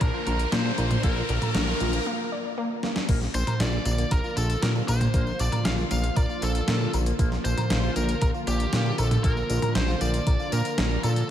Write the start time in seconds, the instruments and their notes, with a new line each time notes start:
Already playing: analog synth pad D3 F3 A#3 F4, riser
0.01 analog synth bass A#1, synth arpeggio sound D4, clean electric guitar A#4, lead electric guitar A#4, kick, closed hi-hat
0.14 clean electric guitar F4
0.27 analog synth bass A#1, clean electric guitar D4, synth arpeggio sound F4, lead electric guitar A#4, closed hi-hat
0.39 closed hi-hat
0.52 analog synth bass A#2, synth arpeggio sound A#3, clean electric guitar A#3, lead electric guitar C5, snare, closed hi-hat
0.65 clean electric guitar D4
0.78 analog synth bass A#1, synth arpeggio sound D4, clean electric guitar A#4, closed hi-hat
0.91 clean electric guitar A#3, closed hi-hat, mid tom
1.03 analog synth bass A#1, clean electric guitar A#3, synth arpeggio sound F4, lead electric guitar A#4, kick, closed hi-hat
1.29 analog synth bass A#1, synth arpeggio sound A#3, clean electric guitar D4, closed hi-hat
1.42 lead electric guitar A4, clean electric guitar A#4, closed hi-hat, mid tom
1.55 analog synth bass A#1, clean electric guitar A#3, synth arpeggio sound D4, lead electric guitar A#4, snare, closed hi-hat
1.67 clean electric guitar F4, snare
1.80 analog synth bass A#1, synth arpeggio sound F4, closed hi-hat
1.93 clean electric guitar A#3, closed hi-hat
2.06 synth arpeggio sound A#3
2.32 synth arpeggio sound D5
2.58 synth arpeggio sound A#3
2.83 synth arpeggio sound A#3, snare
2.96 snare
3.09 analog synth bass A#1, analog synth pad D3 F3 A#3 F4, clean electric guitar A#3, kick, closed hi-hat, crash, tambourine
3.21 snare, tambourine
3.34 analog synth bass A#1, clean electric guitar D4, lead electric guitar C5, closed hi-hat, tambourine
3.47 clean electric guitar A#4, closed hi-hat, mid tom, tambourine
3.60 analog synth bass A#1, clean electric guitar A#3, lead electric guitar D5, snare, closed hi-hat, tambourine
3.73 clean electric guitar F4, tambourine
3.85 analog synth bass A#1, lead electric guitar D5, closed hi-hat, tambourine
3.98 clean electric guitar A#3, closed hi-hat, tambourine
4.11 analog synth bass A#1, clean electric guitar A#4, lead electric guitar A#4, kick, closed hi-hat, tambourine
4.24 clean electric guitar F4, tambourine
4.37 analog synth bass A#1, clean electric guitar D4, lead electric guitar A4, closed hi-hat, tambourine
4.50 closed hi-hat, tambourine
4.62 analog synth bass A#2, clean electric guitar A#3, lead electric guitar A#4, snare, closed hi-hat, tambourine
4.75 clean electric guitar D4, tambourine
4.88 analog synth bass A#1, clean electric guitar A#4, lead electric guitar C5, closed hi-hat, tambourine
5.01 clean electric guitar A#3, closed hi-hat, mid tom, tambourine
5.14 analog synth bass A#1, clean electric guitar A#3, kick, closed hi-hat, tambourine
5.27 tambourine
5.39 analog synth bass A#1, clean electric guitar D4, lead electric guitar D5, closed hi-hat, tambourine
5.52 clean electric guitar A#4, closed hi-hat, mid tom, tambourine
5.65 analog synth bass A#1, clean electric guitar A#3, lead electric guitar F5, snare, closed hi-hat, tambourine
5.78 clean electric guitar F4, snare, tambourine
5.91 analog synth bass A#1, lead electric guitar F5, closed hi-hat, tambourine
6.04 clean electric guitar A#3, closed hi-hat, tambourine
6.16 analog synth bass A#1, clean electric guitar A#4, lead electric guitar D5, kick, closed hi-hat, tambourine
6.29 clean electric guitar F4, tambourine
6.42 analog synth bass A#1, clean electric guitar D4, lead electric guitar A4, closed hi-hat, tambourine
6.55 closed hi-hat, tambourine
6.68 analog synth bass A#2, clean electric guitar A#3, snare, closed hi-hat, tambourine
6.81 clean electric guitar D4, tambourine
6.93 analog synth bass A#1, clean electric guitar A#4, closed hi-hat, tambourine
7.06 clean electric guitar A#3, closed hi-hat, tambourine
7.19 analog synth bass A#1, clean electric guitar A#3, kick, closed hi-hat, tambourine
7.32 snare, tambourine
7.45 analog synth bass A#1, clean electric guitar D4, lead electric guitar C5, closed hi-hat, tambourine
7.58 clean electric guitar A#4, closed hi-hat, mid tom, tambourine
7.70 analog synth bass A#1, clean electric guitar A#3, snare, closed hi-hat, tambourine
7.83 clean electric guitar F4, tambourine
7.96 analog synth bass A#1, lead electric guitar A#4, closed hi-hat, tambourine
8.09 clean electric guitar A#3, closed hi-hat, tambourine
8.22 analog synth bass A#1, lead electric guitar A#4, clean electric guitar A#4, kick, closed hi-hat, tambourine
8.34 clean electric guitar F4, tambourine
8.47 analog synth bass A#1, clean electric guitar D4, lead electric guitar G4, closed hi-hat, tambourine
8.60 closed hi-hat, tambourine
8.73 analog synth bass A#2, clean electric guitar A#3, snare, closed hi-hat, tambourine
8.86 clean electric guitar D4, tambourine
8.98 analog synth bass A#1, lead electric guitar A4, clean electric guitar A#4, closed hi-hat, tambourine
9.11 clean electric guitar A#3, closed hi-hat, mid tom, tambourine
9.24 analog synth bass A#1, clean electric guitar A#3, lead electric guitar A#4, kick, closed hi-hat, tambourine
9.37 tambourine
9.50 analog synth bass A#1, clean electric guitar D4, closed hi-hat, tambourine
9.62 clean electric guitar A#4, closed hi-hat, mid tom, tambourine
9.75 analog synth bass A#1, clean electric guitar A#3, lead electric guitar C5, snare, closed hi-hat, tambourine
9.88 clean electric guitar F4, snare, tambourine
10.01 analog synth bass A#1, lead electric guitar D5, closed hi-hat, tambourine
10.14 clean electric guitar A#3, closed hi-hat, tambourine
10.27 analog synth bass A#1, clean electric guitar A#4, kick, closed hi-hat, tambourine
10.39 clean electric guitar F4, tambourine
10.52 analog synth bass A#2, clean electric guitar D4, lead electric guitar A#4, closed hi-hat, tambourine
10.65 closed hi-hat, tambourine
10.78 analog synth bass A#1, clean electric guitar A#3, snare, closed hi-hat, tambourine
10.91 clean electric guitar D4, tambourine
11.03 analog synth bass A#2, lead electric guitar A4, clean electric guitar A#4, closed hi-hat, tambourine
11.16 clean electric guitar A#3, closed hi-hat, tambourine